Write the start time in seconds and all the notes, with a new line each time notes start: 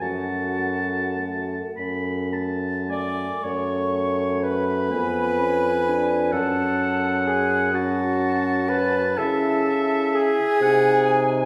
0.00 F#2 A3 F#4 F#5 A5
0.60 A3
1.18 A3
1.76 F#2 A3 B5
2.33 A3 A5
2.89 A3 D5 G#5 D6
3.43 F#2 A3 C#5 C#6
4.43 B4 B5
4.90 F2 B3 G#5
5.39 C#4
5.85 D4
6.32 F#2 C#4 A4 F#5 A5
7.26 G#4 G#5
7.73 C#4 F#4 F#5 A5
8.69 B4 B5
9.17 C#3 E4 A4 E5 A5
10.14 G#4 G#5
10.61 C3 D#4 F#5
11.06 G#5